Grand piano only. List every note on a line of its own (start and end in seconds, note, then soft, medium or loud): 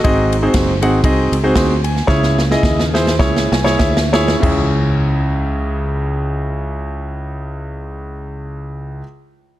0.04 0.78 G#2 medium
0.04 0.34 C4 medium
0.04 0.34 D#4 medium
0.04 0.34 F#4 medium
0.04 0.34 G#4 medium
0.04 0.34 D#5 loud
0.42 0.70 C4 medium
0.42 0.70 D#4 medium
0.42 0.70 F#4 medium
0.42 0.70 G#4 medium
0.42 0.70 C5 medium
0.82 0.98 C4 medium
0.82 0.99 D#4 medium
0.82 0.98 F#4 medium
0.82 0.98 G#4 medium
0.82 0.99 F#5 medium
1.04 1.35 C4 loud
1.04 1.35 D#4 medium
1.04 1.35 F#4 medium
1.04 1.34 G#4 medium
1.04 1.35 D#5 medium
1.43 1.73 C4 medium
1.43 1.72 D#4 medium
1.43 1.73 F#4 medium
1.43 1.72 G#4 medium
1.43 1.73 C5 loud
1.56 1.84 C6 medium
1.84 2.36 G#5 medium
2.07 2.90 C#3 medium
2.07 2.40 E4 medium
2.07 2.40 G#4 medium
2.07 2.40 C#5 loud
2.51 2.82 E4 medium
2.51 2.82 G#4 medium
2.51 2.82 D#5 loud
2.94 3.13 E4 medium
2.94 3.13 G#4 medium
2.94 3.13 C5 loud
3.19 3.55 E4 medium
3.19 3.55 G#4 medium
3.19 3.55 C#5 loud
3.52 3.78 G#5 medium
3.64 4.00 E4 medium
3.64 4.00 G#4 medium
3.64 3.99 C#5 loud
3.78 4.11 E5 medium
4.13 4.35 E4 loud
4.13 4.35 G#4 medium
4.13 4.35 C#5 loud
4.13 4.41 E5 medium
4.40 9.01 C#2 medium
4.40 8.99 C#4 medium
4.40 9.00 E4 medium
4.40 9.01 G#4 medium
4.44 9.03 E5 medium